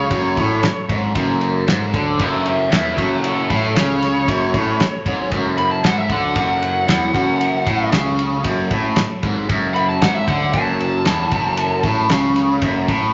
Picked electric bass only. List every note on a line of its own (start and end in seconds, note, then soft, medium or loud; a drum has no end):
0.10 0.35 F#1 medium
0.37 0.61 A1 medium
0.63 muted picked electric bass stroke soft
0.89 1.14 G#1 medium
1.16 1.64 F#1 medium
1.68 1.92 G#1 medium
1.93 2.18 D2 medium
2.19 2.68 F#1 medium
2.72 2.96 E1 medium
2.98 3.46 F#1 medium
3.50 3.75 A1 medium
3.76 4.25 C#2 medium
4.28 4.52 F#1 medium
4.54 4.78 A1 medium
4.81 muted picked electric bass stroke soft
5.06 5.30 G#1 medium
5.32 5.81 F#1 medium
5.84 6.09 G#1 medium
6.09 6.34 D2 medium
6.35 6.85 F#1 medium
6.88 7.13 E1 medium
7.14 7.63 F#1 medium
7.67 7.91 A1 medium
7.93 8.41 C#2 medium
8.45 8.69 F#1 medium
8.71 8.95 A1 medium
8.97 muted picked electric bass stroke soft
9.23 9.47 G#1 medium
9.49 9.98 F#1 medium
10.02 10.26 G#1 medium
10.28 10.52 D2 loud
10.54 11.02 F#1 medium
11.06 11.30 E1 medium
11.32 11.80 F#1 medium
11.84 12.08 A1 medium
12.10 12.59 C#2 medium
12.62 12.86 F#1 medium
12.88 13.12 A1 medium